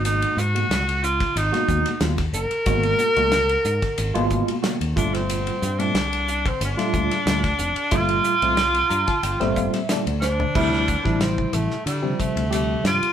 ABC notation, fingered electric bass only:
X:1
M:4/4
L:1/16
Q:1/4=91
K:Gphr
V:1 name="Fingered electric bass" clef=bass
A,,,2 A,,2 _D,,4 A,,, z E,, z E,,2 _G,,, z | A,,,2 z _D,,3 A,, z A,,, A,,,2 z2 E,, G,,,2- | G,,,2 G,,2 C,,4 G,,, z D,, z D,,2 F,,, z | G,,,2 z C,,3 G,, z G,,, G,,,2 z2 D,,3 |
[K:Dm] D,,3 A,,,3 A,,, z D,2 z D,,3 G,, z |]